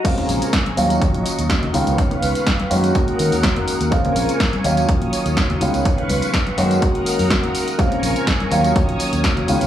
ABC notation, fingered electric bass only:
X:1
M:4/4
L:1/16
Q:"Swing 16ths" 1/4=124
K:Ebdor
V:1 name="Fingered electric bass" clef=bass
z2 B,,, z3 E,,2 E,, B,,, z E,,3 D,, D,, | z2 D,, z3 G,,2 z2 E, E,,2 G,,, z E,, | z2 B,,, z3 E,,2 E,, B,,, z E,,3 D,, D,, | z2 D,, z3 G,,2 z3 G,, E,, z3 |
z2 B,,, z3 E,,2 E,, B,,, z E,,3 D,, D,, |]